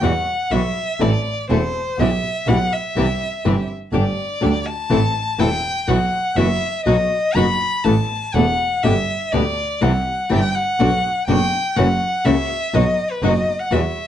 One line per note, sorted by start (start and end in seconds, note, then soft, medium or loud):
0.01 0.22 E2 medium
0.01 0.11 B2 medium
0.01 0.11 E3 medium
0.01 0.23 G3 medium
0.01 0.11 G3 medium
0.01 0.11 B3 medium
0.01 0.23 E4 medium
0.01 0.23 F#4 medium
0.01 0.11 F#4 medium
0.01 0.53 F#5 medium
0.51 0.72 B1 medium
0.51 0.60 B2 medium
0.51 0.60 E3 medium
0.51 0.72 G3 medium
0.51 0.61 G3 medium
0.51 0.61 B3 medium
0.51 0.72 E4 medium
0.51 0.72 F#4 medium
0.51 0.61 F#4 medium
0.51 1.03 E5 medium
1.00 1.21 A1 medium
1.00 1.09 E3 medium
1.00 1.10 A3 medium
1.00 1.22 C4 medium
1.00 1.10 C4 medium
1.00 1.22 E4 medium
1.00 1.10 E4 medium
1.00 1.22 A4 medium
1.00 1.49 D5 medium
1.50 1.71 E1 medium
1.50 1.59 E3 medium
1.50 1.59 A3 medium
1.50 1.71 C4 medium
1.50 1.60 C4 medium
1.50 1.71 E4 medium
1.50 1.60 E4 medium
1.50 1.71 A4 medium
1.50 2.01 C5 medium
1.98 2.19 B1 medium
1.98 2.09 B2 medium
1.98 2.09 E3 medium
1.98 2.09 G3 medium
1.98 2.20 B3 medium
1.98 2.09 B3 medium
1.98 2.20 E4 medium
1.98 2.09 E4 medium
1.98 2.20 G4 medium
1.98 2.50 E5 medium
2.47 2.68 B1 medium
2.47 2.57 B2 medium
2.47 2.57 E3 medium
2.47 2.57 G3 medium
2.47 2.68 B3 medium
2.47 2.57 B3 medium
2.47 2.68 E4 medium
2.47 2.57 E4 medium
2.47 2.69 G4 medium
2.47 2.74 F#5 loud
2.73 3.70 E5 medium
2.96 3.17 C2 medium
2.96 3.06 C3 medium
2.96 3.06 E3 medium
2.96 3.06 G3 medium
2.96 3.17 C4 medium
2.96 3.06 C4 medium
2.96 3.17 E4 medium
2.96 3.06 E4 loud
2.96 3.17 G4 medium
3.45 3.66 G1 medium
3.45 3.54 C3 medium
3.45 3.54 E3 medium
3.45 3.54 G3 medium
3.45 3.65 C4 medium
3.45 3.55 C4 medium
3.45 3.66 E4 medium
3.45 3.55 E4 medium
3.45 3.66 G4 medium
3.92 4.14 G1 loud
3.92 4.02 D3 medium
3.92 4.02 G3 medium
3.92 4.14 A3 medium
3.92 4.14 D4 medium
3.92 4.03 D4 medium
3.92 4.14 G4 medium
3.92 4.03 G4 medium
3.92 4.67 D5 medium
4.41 4.63 D2 medium
4.41 4.51 D3 medium
4.41 4.51 G3 medium
4.41 4.62 A3 medium
4.41 4.62 D4 medium
4.41 4.51 D4 medium
4.41 4.62 G4 medium
4.41 4.51 G4 medium
4.66 5.41 A5 medium
4.90 5.11 A1 medium
4.90 4.99 E3 medium
4.90 4.99 A3 medium
4.90 5.00 C4 loud
4.90 5.11 C4 medium
4.90 5.11 E4 medium
4.90 5.00 E4 loud
4.90 5.11 A4 medium
5.39 5.60 E1 medium
5.39 5.48 E3 medium
5.39 5.48 A3 medium
5.39 5.60 C4 medium
5.39 5.48 C4 medium
5.39 5.60 E4 medium
5.39 5.49 E4 medium
5.39 5.60 A4 medium
5.39 5.90 G5 medium
5.87 6.08 B1 medium
5.87 5.97 B2 medium
5.87 5.97 E3 medium
5.87 6.08 B3 medium
5.87 5.97 B3 medium
5.87 6.08 E4 medium
5.87 5.97 E4 medium
5.87 6.08 F#4 medium
5.87 5.97 F#4 medium
5.87 6.37 F#5 medium
6.36 6.57 F#1 medium
6.36 6.46 B2 medium
6.36 6.46 E3 medium
6.36 6.57 B3 medium
6.36 6.46 B3 medium
6.36 6.57 E4 medium
6.36 6.46 E4 medium
6.36 6.57 F#4 medium
6.36 6.46 F#4 medium
6.36 6.84 E5 medium
6.85 7.07 B1 medium
6.85 6.95 B2 medium
6.85 6.95 F#3 medium
6.85 7.07 B3 medium
6.85 6.95 B3 medium
6.85 7.07 D#4 medium
6.85 6.96 D#4 medium
6.85 7.07 F#4 medium
6.85 6.96 F#4 medium
6.85 7.36 D#5 medium
7.35 7.56 F#1 medium
7.35 7.45 B2 medium
7.35 7.45 F#3 medium
7.35 7.45 B3 medium
7.35 7.57 B3 medium
7.35 7.45 D#4 medium
7.35 7.57 D#4 medium
7.35 7.57 F#4 medium
7.35 7.45 F#4 medium
7.35 7.86 B5 medium
7.84 8.06 A1 medium
7.84 7.94 E3 medium
7.84 7.94 A3 medium
7.84 7.94 B3 medium
7.84 8.06 B3 medium
7.84 8.06 E4 medium
7.84 7.95 E4 medium
7.84 8.07 A4 medium
7.84 8.36 A5 medium
8.34 8.56 E1 medium
8.34 8.44 E3 medium
8.34 8.44 A3 medium
8.34 8.44 B3 medium
8.34 8.56 B3 medium
8.34 8.56 E4 medium
8.34 8.45 E4 medium
8.34 8.56 A4 medium
8.34 8.84 F#5 medium
8.83 9.05 G1 medium
8.83 8.93 B2 medium
8.83 8.93 D3 medium
8.83 8.93 G3 medium
8.83 9.05 B3 medium
8.83 8.93 B3 medium
8.83 9.05 D4 medium
8.83 9.05 G4 medium
8.83 8.94 G4 loud
8.83 9.33 E5 medium
9.32 9.54 D2 medium
9.32 9.42 B2 medium
9.32 9.42 D3 medium
9.32 9.43 G3 medium
9.32 9.54 B3 medium
9.32 9.43 B3 medium
9.32 9.54 D4 medium
9.32 9.54 G4 medium
9.32 9.43 G4 medium
9.32 9.83 D5 medium
9.81 10.03 C2 medium
9.81 9.91 C3 medium
9.81 9.91 E3 medium
9.81 9.91 G3 medium
9.81 9.91 C4 medium
9.81 10.03 C4 medium
9.81 10.03 E4 medium
9.81 9.91 E4 medium
9.81 10.03 G4 medium
9.81 10.31 F#5 medium
10.29 10.52 G1 medium
10.29 10.39 C3 medium
10.29 10.40 E3 medium
10.29 10.40 G3 medium
10.29 10.40 C4 medium
10.29 10.52 C4 medium
10.29 10.52 E4 medium
10.29 10.40 E4 medium
10.29 10.52 G4 medium
10.29 10.56 G5 medium
10.54 11.27 F#5 medium
10.80 11.01 B1 medium
10.80 10.89 B2 medium
10.80 10.89 D3 medium
10.80 11.00 B3 medium
10.80 10.89 B3 medium
10.80 11.00 D4 medium
10.80 10.89 D4 medium
10.80 11.01 F#4 medium
10.80 10.90 F#4 loud
11.27 11.49 F#1 medium
11.27 11.37 B2 medium
11.27 11.37 D3 medium
11.27 11.49 B3 medium
11.27 11.37 B3 medium
11.27 11.49 D4 medium
11.27 11.38 D4 medium
11.27 11.49 F#4 medium
11.27 11.38 F#4 medium
11.27 11.78 G5 loud
11.76 11.98 F#1 medium
11.76 11.86 C#3 medium
11.76 11.86 E3 loud
11.76 11.97 A#3 medium
11.76 11.86 A#3 medium
11.76 11.86 C#4 medium
11.76 11.98 E4 medium
11.76 11.86 F#4 medium
11.76 11.98 F#4 medium
11.76 12.27 F#5 medium
12.24 12.46 C#2 medium
12.24 12.34 C#3 medium
12.24 12.34 E3 medium
12.24 12.46 A#3 medium
12.24 12.34 A#3 medium
12.24 12.34 C#4 loud
12.24 12.46 E4 medium
12.24 12.46 F#4 medium
12.24 12.35 F#4 medium
12.24 12.76 E5 loud
12.73 12.94 B1 medium
12.73 12.83 B2 medium
12.73 12.83 F#3 medium
12.73 12.94 B3 medium
12.73 12.83 B3 medium
12.73 12.95 D#4 medium
12.73 12.83 D#4 medium
12.73 12.95 F#4 medium
12.73 12.83 F#4 loud
12.73 13.12 D#5 medium
13.11 13.24 B4 medium
13.22 13.43 F#1 medium
13.22 13.31 B2 medium
13.22 13.32 F#3 medium
13.22 13.43 B3 medium
13.22 13.32 B3 medium
13.22 13.43 D#4 medium
13.22 13.32 D#4 medium
13.22 13.43 F#4 medium
13.22 13.32 F#4 medium
13.22 13.61 D#5 medium
13.59 13.73 F#5 medium
13.71 13.92 E2 medium
13.71 13.80 B2 medium
13.71 13.80 E3 medium
13.71 13.92 G3 medium
13.71 13.80 G3 medium
13.71 13.80 B3 loud
13.71 13.92 E4 medium
13.71 13.92 F#4 medium
13.71 13.81 F#4 medium
13.71 14.07 E5 medium